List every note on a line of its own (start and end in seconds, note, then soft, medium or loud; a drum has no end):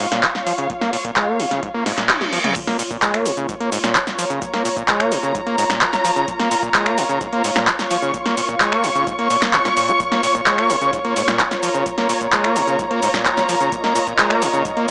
0.00 0.06 G#2 loud
0.00 2.55 F4 medium
0.00 2.56 C#5 medium
0.00 2.58 F5 medium
0.00 open hi-hat loud
0.12 0.25 A#2 loud
0.12 snare medium
0.12 closed hi-hat medium
0.23 0.27 A#3 medium
0.23 kick loud
0.23 clap loud
0.23 closed hi-hat medium
0.35 0.39 A#1 medium
0.35 snare medium
0.46 0.53 F3 medium
0.46 open hi-hat loud
0.58 0.68 C#3 medium
0.58 closed hi-hat medium
0.70 0.74 A#2 medium
0.70 kick loud
0.70 closed hi-hat medium
0.81 0.91 A#3 medium
0.81 snare medium
0.93 0.97 A#2 medium
0.93 open hi-hat loud
1.05 1.11 A#2 loud
1.05 kick medium
1.05 closed hi-hat medium
1.16 1.29 G#3 medium
1.16 kick loud
1.16 clap loud
1.16 closed hi-hat medium
1.28 1.41 A#3 loud
1.39 1.46 A#2 loud
1.39 open hi-hat loud
1.51 1.61 C#3 medium
1.51 snare soft
1.51 closed hi-hat medium
1.63 1.69 G#2 medium
1.63 kick loud
1.63 closed hi-hat soft
1.63 reverse cymbal medium
1.74 1.84 A#3 loud
1.86 1.92 G#2 loud
1.86 snare medium
1.86 open hi-hat loud
1.97 2.11 A#2 loud
1.97 kick medium
1.97 snare medium
1.97 clap soft
1.97 closed hi-hat medium
2.09 2.13 A#3 medium
2.09 kick loud
2.09 clap loud
2.09 closed hi-hat medium
2.09 high tom medium
2.21 2.25 A#1 medium
2.21 snare medium
2.21 high tom medium
2.33 2.39 F3 medium
2.33 open hi-hat loud
2.44 2.54 C#3 medium
2.44 closed hi-hat medium
2.44 mid tom medium
2.56 2.60 A#2 medium
2.56 14.91 A#2 medium
2.56 14.91 A#3 medium
2.56 14.91 F4 medium
2.56 6.27 C#5 medium
2.56 kick loud
2.56 closed hi-hat medium
2.56 crash loud
2.56 cabasa soft
2.67 2.77 A#3 loud
2.67 snare medium
2.67 closed hi-hat soft
2.79 2.83 A#2 medium
2.79 open hi-hat loud
2.79 cabasa medium
2.91 2.97 A#2 loud
2.91 14.91 C#5 medium
2.91 kick medium
2.91 closed hi-hat soft
2.91 cabasa soft
3.02 3.16 G#3 medium
3.02 kick loud
3.02 clap loud
3.02 closed hi-hat medium
3.02 cabasa soft
3.14 3.27 A#3 loud
3.14 finger snap medium
3.14 closed hi-hat soft
3.26 3.32 A#2 loud
3.26 open hi-hat loud
3.26 cabasa medium
3.37 3.47 C#3 medium
3.37 closed hi-hat soft
3.37 cabasa soft
3.49 3.55 G#2 medium
3.49 kick loud
3.49 closed hi-hat medium
3.49 cabasa soft
3.60 3.70 A#3 loud
3.60 closed hi-hat soft
3.72 3.79 G#2 loud
3.72 open hi-hat loud
3.72 cabasa medium
3.84 3.97 A#2 loud
3.84 finger snap medium
3.84 snare medium
3.84 cabasa soft
3.95 3.99 A#3 medium
3.95 kick loud
3.95 clap loud
3.95 closed hi-hat medium
3.95 cabasa soft
4.07 4.11 A#1 medium
4.07 snare medium
4.07 closed hi-hat soft
4.07 cabasa soft
4.17 4.25 F3 medium
4.17 7.92 A#5 medium
4.17 open hi-hat loud
4.17 cabasa medium
4.30 4.40 C#3 medium
4.30 closed hi-hat soft
4.30 cabasa soft
4.42 4.46 A#2 medium
4.42 kick loud
4.42 closed hi-hat medium
4.42 cabasa soft
4.54 4.63 A#3 loud
4.54 snare medium
4.54 closed hi-hat soft
4.65 4.69 A#2 medium
4.65 open hi-hat loud
4.65 cabasa medium
4.77 4.83 A#2 loud
4.77 kick medium
4.77 closed hi-hat soft
4.77 cabasa soft
4.88 5.02 G#3 medium
4.88 kick loud
4.88 clap loud
4.88 closed hi-hat medium
4.88 cabasa soft
5.00 5.13 A#3 loud
5.00 finger snap medium
5.00 closed hi-hat soft
5.12 5.18 A#2 loud
5.12 open hi-hat loud
5.12 cabasa medium
5.23 5.33 C#3 medium
5.23 closed hi-hat soft
5.23 cabasa soft
5.35 5.41 G#2 medium
5.35 kick loud
5.35 closed hi-hat medium
5.35 cabasa soft
5.46 5.56 A#3 loud
5.46 closed hi-hat soft
5.58 5.65 G#2 loud
5.58 open hi-hat loud
5.58 cabasa medium
5.70 5.83 A#2 loud
5.70 finger snap medium
5.70 kick medium
5.70 snare medium
5.70 closed hi-hat soft
5.70 cabasa soft
5.81 5.85 A#3 medium
5.81 kick loud
5.81 clap loud
5.81 closed hi-hat medium
5.81 cabasa soft
5.93 5.97 A#1 medium
5.93 snare medium
5.93 closed hi-hat soft
5.93 cabasa soft
6.05 6.11 F3 medium
6.05 open hi-hat loud
6.05 cabasa medium
6.16 6.26 C#3 medium
6.16 closed hi-hat soft
6.16 cabasa soft
6.28 6.32 A#2 medium
6.28 9.99 F5 medium
6.28 kick loud
6.28 closed hi-hat medium
6.28 cabasa soft
6.40 6.49 A#3 loud
6.40 snare medium
6.40 closed hi-hat soft
6.51 6.55 A#2 medium
6.51 open hi-hat loud
6.51 cabasa medium
6.63 6.69 A#2 loud
6.63 kick medium
6.63 cabasa soft
6.74 6.88 G#3 medium
6.74 kick loud
6.74 clap loud
6.74 closed hi-hat medium
6.74 cabasa soft
6.86 6.99 A#3 loud
6.86 finger snap medium
6.86 closed hi-hat soft
6.98 7.04 A#2 loud
6.98 open hi-hat loud
6.98 cabasa medium
7.09 7.19 C#3 medium
7.09 closed hi-hat soft
7.09 cabasa soft
7.21 7.27 G#2 medium
7.21 kick loud
7.21 closed hi-hat medium
7.21 cabasa soft
7.33 7.42 A#3 loud
7.33 closed hi-hat soft
7.44 7.51 G#2 loud
7.44 open hi-hat loud
7.44 cabasa medium
7.56 7.69 A#2 loud
7.56 finger snap medium
7.56 snare medium
7.56 cabasa soft
7.67 7.71 A#3 medium
7.67 kick loud
7.67 clap loud
7.67 closed hi-hat medium
7.67 cabasa soft
7.79 7.83 A#1 medium
7.79 snare medium
7.79 closed hi-hat soft
7.79 cabasa soft
7.89 7.97 F3 medium
7.89 11.64 C#6 medium
7.89 open hi-hat loud
7.89 cabasa medium
8.02 8.12 C#3 medium
8.02 cabasa soft
8.14 8.18 A#2 medium
8.14 kick loud
8.14 closed hi-hat medium
8.14 cabasa soft
8.26 8.35 A#3 loud
8.26 snare medium
8.26 closed hi-hat soft
8.37 8.41 A#2 medium
8.37 open hi-hat loud
8.37 cabasa medium
8.49 8.55 A#2 loud
8.49 kick medium
8.49 closed hi-hat soft
8.49 cabasa soft
8.60 8.74 G#3 medium
8.60 kick loud
8.60 clap loud
8.60 closed hi-hat medium
8.60 cabasa soft
8.72 8.85 A#3 loud
8.72 finger snap medium
8.72 closed hi-hat soft
8.84 8.90 A#2 loud
8.84 open hi-hat loud
8.84 cabasa medium
8.95 9.05 C#3 medium
8.95 closed hi-hat soft
8.95 cabasa soft
9.07 9.13 G#2 medium
9.07 kick loud
9.07 closed hi-hat medium
9.07 cabasa soft
9.19 9.28 A#3 loud
9.19 closed hi-hat soft
9.30 9.37 A#2 loud
9.30 open hi-hat loud
9.30 cabasa medium
9.42 9.55 A#3 medium
9.42 finger snap medium
9.42 kick medium
9.42 snare medium
9.42 clap soft
9.42 closed hi-hat soft
9.42 cabasa soft
9.53 9.60 A#2 medium
9.53 kick loud
9.53 clap loud
9.53 closed hi-hat medium
9.53 cabasa soft
9.65 9.69 A#2 medium
9.65 snare medium
9.65 closed hi-hat soft
9.65 cabasa soft
9.77 9.90 A#2 medium
9.77 open hi-hat loud
9.77 cabasa medium
9.88 9.92 C#4 loud
9.88 closed hi-hat soft
9.88 cabasa soft
10.00 10.04 A#2 medium
10.00 13.71 C#5 medium
10.00 kick loud
10.00 closed hi-hat medium
10.00 cabasa soft
10.12 10.21 A#3 loud
10.12 snare medium
10.12 closed hi-hat soft
10.23 10.27 A#2 medium
10.23 open hi-hat loud
10.23 cabasa medium
10.35 10.41 A#2 loud
10.35 kick medium
10.35 closed hi-hat soft
10.35 cabasa soft
10.46 10.60 G#3 medium
10.46 kick loud
10.46 clap loud
10.46 closed hi-hat medium
10.46 cabasa soft
10.58 10.71 A#3 loud
10.58 finger snap medium
10.58 closed hi-hat soft
10.70 10.76 A#2 loud
10.70 open hi-hat loud
10.70 cabasa medium
10.81 10.91 C#3 medium
10.81 closed hi-hat soft
10.81 cabasa soft
10.93 11.00 G#2 medium
10.93 kick loud
10.93 closed hi-hat medium
10.93 cabasa soft
11.05 11.14 A#3 loud
11.05 closed hi-hat soft
11.16 11.23 G#2 loud
11.16 open hi-hat loud
11.16 cabasa medium
11.28 11.41 A#2 loud
11.28 finger snap medium
11.28 snare medium
11.28 cabasa soft
11.39 11.43 A#3 medium
11.39 kick loud
11.39 clap loud
11.39 closed hi-hat medium
11.39 cabasa soft
11.51 11.55 A#1 medium
11.51 snare medium
11.51 closed hi-hat soft
11.51 cabasa soft
11.61 11.69 F3 medium
11.61 14.91 A#5 medium
11.61 open hi-hat loud
11.61 cabasa medium
11.74 11.84 C#3 medium
11.74 closed hi-hat soft
11.74 cabasa soft
11.86 11.90 A#2 medium
11.86 kick loud
11.86 closed hi-hat medium
11.86 cabasa soft
11.98 12.07 A#3 loud
11.98 snare medium
11.98 closed hi-hat soft
12.09 12.13 A#2 medium
12.09 open hi-hat loud
12.09 cabasa medium
12.21 12.27 A#2 loud
12.21 kick medium
12.21 closed hi-hat soft
12.21 cabasa soft
12.32 12.46 G#3 medium
12.32 kick loud
12.32 clap loud
12.32 closed hi-hat medium
12.32 cabasa soft
12.44 12.57 A#3 loud
12.44 finger snap medium
12.44 closed hi-hat soft
12.56 12.62 A#2 loud
12.56 open hi-hat loud
12.56 cabasa medium
12.68 12.77 C#3 medium
12.68 closed hi-hat soft
12.68 cabasa soft
12.79 12.86 G#2 medium
12.79 kick loud
12.79 closed hi-hat medium
12.79 cabasa soft
12.91 13.00 A#3 loud
12.91 closed hi-hat soft
13.02 13.09 G#2 loud
13.02 open hi-hat loud
13.02 cabasa medium
13.14 13.27 A#2 loud
13.14 finger snap medium
13.14 kick medium
13.14 snare medium
13.14 closed hi-hat soft
13.14 cabasa soft
13.25 13.29 A#3 medium
13.25 kick loud
13.25 clap loud
13.25 closed hi-hat medium
13.25 cabasa soft
13.37 13.41 A#1 medium
13.37 snare medium
13.37 closed hi-hat soft
13.37 cabasa soft
13.49 13.55 F3 medium
13.49 open hi-hat loud
13.49 cabasa medium
13.61 13.70 C#3 medium
13.61 closed hi-hat soft
13.61 cabasa soft
13.72 13.76 A#2 medium
13.72 14.91 D#5 medium
13.72 kick loud
13.72 closed hi-hat medium
13.72 cabasa soft
13.84 13.93 A#3 loud
13.84 snare medium
13.84 closed hi-hat soft
13.95 13.99 A#2 medium
13.95 open hi-hat loud
13.95 cabasa medium
14.07 14.13 A#2 loud
14.07 kick medium
14.07 closed hi-hat soft
14.07 cabasa soft
14.18 14.32 G#3 medium
14.18 kick loud
14.18 clap loud
14.18 closed hi-hat medium
14.18 cabasa soft
14.30 14.44 A#3 loud
14.30 finger snap medium
14.30 closed hi-hat soft
14.42 14.48 A#2 loud
14.42 open hi-hat loud
14.42 cabasa medium
14.54 14.63 C#3 medium
14.54 closed hi-hat soft
14.54 cabasa soft
14.65 14.72 G#2 medium
14.65 kick loud
14.65 closed hi-hat medium
14.65 cabasa soft
14.77 14.86 A#3 loud
14.77 closed hi-hat soft